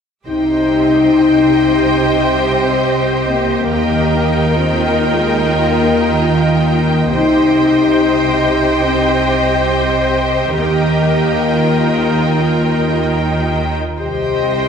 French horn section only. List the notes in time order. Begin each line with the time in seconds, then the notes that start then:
0.27 D#4
2.00 C4
3.29 A#3
4.57 C4
4.86 A#3
5.15 G#3
5.43 A#3
6.29 A#3
7.15 D#4
8.85 C4
10.56 A#3
14.00 G4